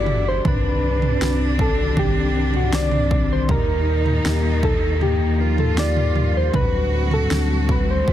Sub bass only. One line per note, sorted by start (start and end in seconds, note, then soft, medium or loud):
0.00 0.41 G1 loud
0.45 1.17 C2 loud
1.21 3.50 C2 loud
3.49 4.21 D#2 loud
4.25 6.50 D#2 loud
6.54 7.27 D2 loud
7.31 8.04 D2 loud
8.08 8.13 D2 medium